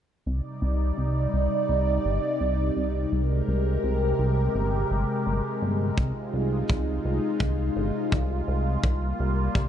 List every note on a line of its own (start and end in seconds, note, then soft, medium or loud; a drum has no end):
0.26 0.41 C2 medium
0.26 8.79 C3 medium
0.26 3.09 G3 medium
0.26 3.09 D#4 medium
0.26 3.09 D5 medium
0.62 0.92 C2 medium
0.98 1.28 C2 medium
1.33 1.48 C2 medium
1.69 1.99 C2 medium
2.05 2.20 G1 medium
2.41 2.71 C2 medium
2.76 3.06 C2 medium
3.12 3.42 C2 medium
3.12 8.79 G#3 medium
3.12 5.95 G4 medium
3.12 5.95 A#4 medium
3.48 3.78 C2 medium
3.84 4.14 C2 medium
4.19 4.49 C2 medium
4.55 4.85 G1 medium
4.91 5.06 G1 medium
5.27 5.41 G1 medium
5.62 5.92 G1 medium
5.98 6.13 C2 medium
5.98 8.81 D#4 medium
5.98 9.69 F4 medium
5.98 kick loud
6.33 6.63 C2 medium
6.70 6.99 C2 medium
6.70 kick loud
7.05 7.20 C2 medium
7.40 7.70 C2 medium
7.40 kick loud
7.76 7.91 G1 medium
8.12 8.42 C2 medium
8.12 kick loud
8.48 8.78 C2 medium
8.83 9.14 C2 medium
8.83 9.69 G3 medium
8.83 9.69 A#3 medium
8.83 kick loud
9.19 9.49 C2 medium
9.55 9.69 C2 medium
9.55 kick loud